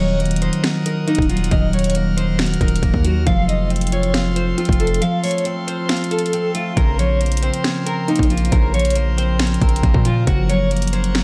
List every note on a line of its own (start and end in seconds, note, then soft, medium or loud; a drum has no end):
0.00 0.50 D#1 loud
0.00 1.50 D#3 loud
0.00 1.28 F#3 medium
0.00 0.26 A3 medium
0.00 2.33 C4 medium
0.00 3.23 A#4 medium
0.00 0.19 C#5 medium
0.00 3.23 F#5 medium
0.00 1.50 D#6 medium
0.20 1.07 A#3 medium
0.20 closed hi-hat soft
0.25 closed hi-hat soft
0.31 closed hi-hat medium
0.36 closed hi-hat medium
0.41 0.85 D#4 medium
0.41 0.62 C5 medium
0.41 closed hi-hat medium
0.53 closed hi-hat medium
0.64 2.38 F#4 loud
0.64 finger snap medium
0.64 snare loud
0.64 closed hi-hat medium
0.85 2.17 D#4 medium
0.85 1.06 A#4 medium
0.85 closed hi-hat medium
1.07 1.94 A#3 medium
1.07 1.28 D#4 medium
1.07 closed hi-hat soft
1.15 1.50 D#1 loud
1.15 kick loud
1.15 closed hi-hat medium
1.22 closed hi-hat medium
1.29 1.56 F#3 medium
1.29 1.50 F4 medium
1.29 closed hi-hat medium
1.37 closed hi-hat medium
1.44 closed hi-hat medium
1.51 2.57 D#1 loud
1.51 3.32 D#3 loud
1.51 1.72 D#5 medium
1.51 3.25 F6 medium
1.51 kick loud
1.51 closed hi-hat medium
1.73 3.03 F#3 medium
1.73 1.94 C#5 medium
1.73 closed hi-hat soft
1.79 closed hi-hat medium
1.84 closed hi-hat medium
1.90 closed hi-hat medium
1.95 2.83 A#3 medium
1.95 closed hi-hat medium
2.17 2.61 D#4 medium
2.17 2.38 C5 medium
2.17 closed hi-hat medium
2.39 3.33 F#4 medium
2.39 finger snap loud
2.39 snare loud
2.39 closed hi-hat soft
2.46 closed hi-hat soft
2.54 closed hi-hat medium
2.61 2.82 D#1 loud
2.61 5.32 D#4 medium
2.61 3.02 A#4 medium
2.61 kick medium
2.61 closed hi-hat medium
2.68 closed hi-hat medium
2.76 closed hi-hat medium
2.83 2.93 D#1 loud
2.83 3.54 A#3 medium
2.83 kick loud
2.83 closed hi-hat medium
2.94 3.25 D#2 loud
2.94 kick medium
3.05 3.32 F#3 medium
3.05 3.25 F#4 medium
3.05 closed hi-hat medium
3.27 4.54 F1 loud
3.27 5.00 F3 loud
3.27 6.73 A4 medium
3.27 3.47 F5 loud
3.27 6.74 F5 medium
3.27 10.23 C6 medium
3.27 kick loud
3.27 closed hi-hat medium
3.48 4.80 A3 medium
3.48 3.69 D#5 medium
3.48 closed hi-hat medium
3.70 4.57 C4 medium
3.70 closed hi-hat soft
3.76 closed hi-hat medium
3.81 closed hi-hat medium
3.87 closed hi-hat medium
3.92 4.36 F4 medium
3.92 4.13 C#5 medium
3.92 closed hi-hat medium
4.03 closed hi-hat medium
4.14 5.80 F5 loud
4.14 finger snap medium
4.14 snare loud
4.14 closed hi-hat medium
4.36 5.67 F4 medium
4.36 4.57 C5 medium
4.36 closed hi-hat medium
4.57 5.45 C4 medium
4.57 4.78 F4 medium
4.57 closed hi-hat soft
4.65 5.00 F1 loud
4.65 kick loud
4.65 closed hi-hat medium
4.73 closed hi-hat medium
4.80 5.24 A3 medium
4.80 5.00 A4 medium
4.80 closed hi-hat medium
4.87 closed hi-hat medium
4.94 closed hi-hat medium
5.01 6.82 F3 loud
5.01 5.22 F5 medium
5.01 closed hi-hat medium
5.24 6.54 A3 medium
5.24 5.44 C#5 medium
5.24 closed hi-hat medium
5.24 open hi-hat medium
5.31 closed hi-hat medium
5.38 closed hi-hat soft
5.45 6.33 C4 medium
5.45 closed hi-hat medium
5.67 6.10 F4 medium
5.67 5.88 C5 medium
5.67 closed hi-hat medium
5.89 7.56 F5 medium
5.89 finger snap medium
5.89 snare loud
5.89 closed hi-hat medium
5.97 closed hi-hat medium
6.04 closed hi-hat soft
6.11 8.63 F4 medium
6.11 6.52 A4 medium
6.11 closed hi-hat medium
6.19 closed hi-hat medium
6.26 closed hi-hat medium
6.33 6.83 C4 medium
6.33 closed hi-hat medium
6.55 7.27 A3 medium
6.55 6.76 F4 medium
6.55 closed hi-hat medium
6.77 7.50 A#1 loud
6.77 8.51 C#3 medium
6.77 6.97 A#4 medium
6.77 11.24 A#4 medium
6.77 10.24 C5 medium
6.77 kick loud
6.77 closed hi-hat medium
6.99 8.29 F3 medium
6.99 7.19 C#5 medium
6.99 closed hi-hat medium
7.21 8.09 A#3 medium
7.21 closed hi-hat soft
7.26 closed hi-hat medium
7.32 closed hi-hat medium
7.37 closed hi-hat medium
7.42 7.86 C4 medium
7.42 7.63 C5 medium
7.42 closed hi-hat medium
7.54 closed hi-hat medium
7.64 9.23 C#4 medium
7.64 finger snap medium
7.64 snare loud
7.64 closed hi-hat medium
7.86 9.17 C4 medium
7.86 8.07 A#4 medium
7.86 closed hi-hat medium
8.08 8.95 A#3 medium
8.08 8.29 D#4 medium
8.08 closed hi-hat soft
8.16 8.51 A#1 loud
8.16 kick medium
8.16 closed hi-hat medium
8.23 closed hi-hat medium
8.30 8.57 F3 medium
8.30 8.51 F4 medium
8.30 closed hi-hat medium
8.38 closed hi-hat medium
8.45 closed hi-hat medium
8.52 9.58 A#1 loud
8.52 10.26 C#3 loud
8.52 8.73 A#4 medium
8.52 kick loud
8.52 closed hi-hat medium
8.74 10.04 F3 medium
8.74 8.95 C#5 medium
8.74 closed hi-hat soft
8.79 closed hi-hat medium
8.85 closed hi-hat medium
8.90 closed hi-hat medium
8.95 9.83 A#3 medium
8.95 closed hi-hat medium
9.17 9.61 C4 medium
9.17 9.38 C5 medium
9.17 closed hi-hat medium
9.39 10.92 C#4 loud
9.39 finger snap loud
9.39 snare loud
9.39 closed hi-hat soft
9.47 closed hi-hat soft
9.54 closed hi-hat medium
9.62 9.83 A#1 loud
9.62 10.33 C4 medium
9.62 10.03 A#4 medium
9.62 kick medium
9.62 closed hi-hat medium
9.69 closed hi-hat medium
9.76 closed hi-hat medium
9.83 9.94 A#1 loud
9.83 10.71 A#3 medium
9.83 kick loud
9.83 closed hi-hat medium
9.94 10.26 A#2 loud
9.94 kick medium
10.05 10.32 F3 medium
10.05 10.26 F4 medium
10.05 closed hi-hat medium
10.27 11.24 F#1 loud
10.27 11.24 C#3 medium
10.27 10.48 F#4 medium
10.27 11.24 F#5 medium
10.27 11.24 C#6 medium
10.27 kick loud
10.27 closed hi-hat medium
10.49 11.24 F#3 medium
10.49 10.70 C#5 medium
10.49 closed hi-hat medium
10.71 11.24 A#3 medium
10.71 closed hi-hat soft
10.77 closed hi-hat medium
10.82 closed hi-hat medium
10.87 closed hi-hat medium
10.93 11.24 C#4 medium
10.93 11.13 C5 medium
10.93 closed hi-hat medium
11.04 closed hi-hat medium
11.15 11.24 C#5 loud
11.15 finger snap medium
11.15 snare loud
11.15 closed hi-hat medium